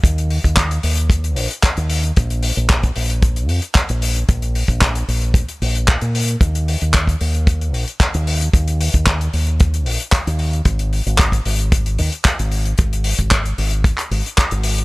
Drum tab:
HH |xxoxxxoxxxoxxxox|xxoxxxoxxxoxxxox|xxoxxxoxxxoxxxox|xxoxxxoxxxoxxxox|
CP |----x-------x---|----x-------x---|----x-------x---|----x-------x---|
BD |o--oo---o---o---|o---oo--o---o---|o--oo---o---o---|o---oo--o---o---|

HH |xxoxxxoxxxoxxxox|xxoxxxoxxxoxxxox|xxoxxxoxxxoxxxox|
CP |----x-------x---|----x-------x---|----x----x--x---|
BD |o--oo---o---o---|o---oo--o---o---|o--oo---o---o---|